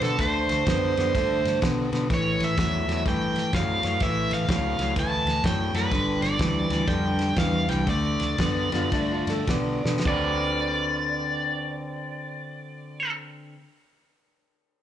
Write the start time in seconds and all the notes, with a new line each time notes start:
0.01 B2 D3 B3 A4, snare, ride
0.19 D2 D3 A3 C5, kick, snare, ride
0.49 D2, snare, ride
0.67 F#2 D3 B3, kick, snare, ride
0.97 F#2 D3 B3, snare, ride
1.15 G2 D3 A3, kick, snare, ride
1.44 G2, snare, ride
1.62 B2 D3 B3, kick, snare, ride
1.92 B2 D3 B3, snare, ride
2.10 A1 A2 E3, kick, snare, ride
2.14 C#5
2.40 A1 E5, snare, ride
2.58 E2 A2 F#3, kick, snare, ride
2.88 E2 A2 F#3, snare, ride
3.05 G2 A2 E3 G5, kick, snare, ride
3.36 snare, ride
3.53 F#2 A2 F#3 F5, kick, snare, ride
3.83 F#2 A2 F#3, snare, ride
4.00 A1 A2 E3 E5, kick, snare, ride
4.30 A1 F5, snare, ride
4.48 C#2 A2 F#3, kick, snare, ride
4.78 C#2 A2 F#3, snare, ride
4.96 D2 A2 E3 A5, kick, snare, ride
5.25 D2, snare, ride
5.44 F#2 A2 F#3 G5, kick, snare, ride
5.74 F#2 A2 F#3 B4, snare, ride
5.91 G1 G2 D3, kick, snare, ride
6.21 G1 D5, snare, ride
6.39 D2 G2 E3, kick, snare, ride
6.70 D2 G2 E3, snare, ride
6.88 F2 G2 D3 G5, kick, snare, ride
7.19 snare, ride
7.36 E2 G2 E3 F5, kick, snare, ride
7.68 C2 G2 E3 G5, snare, ride
7.87 D2 D3 A3 D5, kick, snare, ride
8.20 D2, snare, ride
8.38 F#2 D3 B3, kick, snare, ride
8.72 F#2 D3 B3 F4, snare, ride
8.92 G2 D3 A3 D4, kick, snare, ride
9.12 F4
9.27 G2 A4, snare, ride
9.47 B2 D3 B3 D5, kick, snare, ride
9.85 B2 D3 B3, snare
10.00 snare
10.05 D2 D3 C4 F#4 D5, kick, crash
10.09 B4